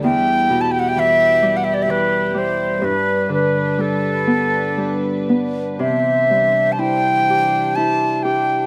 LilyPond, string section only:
\new Staff \with { instrumentName = "String section" } { \time 3/4 \key g \major \tempo 4 = 63 << { <e' g'>2. | <d' b'>2. | <d' c''>2. | } \\ { g2.~ | g2. | e2. | } >> }